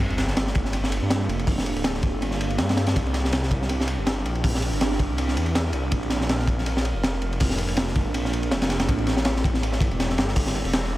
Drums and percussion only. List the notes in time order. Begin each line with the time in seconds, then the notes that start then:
0.10 ride
0.18 snare, ride
0.28 snare
0.37 snare, ride
0.47 snare
0.55 kick, ride
0.65 snare
0.73 ride
0.84 snare
0.92 ride
1.10 snare, ride
1.29 ride
1.39 ride
1.47 kick, open hi-hat
1.58 snare
1.66 ride
1.76 ride
1.84 snare, ride
1.94 snare
2.03 kick, ride
2.22 ride
2.31 snare
2.41 ride
2.50 ride
2.58 snare, ride
2.69 snare, ride
2.77 snare, ride
2.87 snare, ride
2.96 kick, ride
3.06 ride
3.14 snare, ride
3.25 snare
3.33 snare, ride
3.43 snare
3.51 kick, ride
3.62 snare
3.69 ride
3.80 snare
3.88 ride
4.07 snare, ride
4.26 ride
4.35 ride
4.44 kick, open hi-hat
4.55 snare
4.62 ride
4.73 ride
4.81 snare, ride
4.91 snare
4.99 kick, ride
5.18 ride
5.28 snare
5.37 ride
5.46 ride
5.55 snare, ride
5.73 ride
5.92 kick, ride
6.03 ride
6.10 snare, ride
6.21 snare
6.29 snare, ride
6.39 snare
6.47 kick, ride
6.58 snare
6.66 ride
6.77 snare
6.85 ride
7.03 snare, ride
7.22 ride
7.33 ride
7.40 kick, open hi-hat
7.50 snare
7.58 ride
7.68 ride
7.77 snare, ride
7.88 snare
7.95 kick, ride
8.14 ride
8.25 snare
8.33 ride
8.43 ride
8.51 snare, ride
8.62 snare, ride
8.69 snare, ride
8.80 snare, ride
8.89 kick, ride
8.98 ride
9.07 snare, ride
9.17 snare
9.25 snare, ride
9.36 snare
9.44 kick, ride
9.54 snare
9.63 ride
9.72 snare
9.81 kick, ride
9.91 ride
10.00 snare, ride
10.09 snare
10.18 snare, ride
10.28 snare
10.36 kick, open hi-hat
10.46 snare
10.55 ride
10.65 ride
10.73 snare, ride
10.84 snare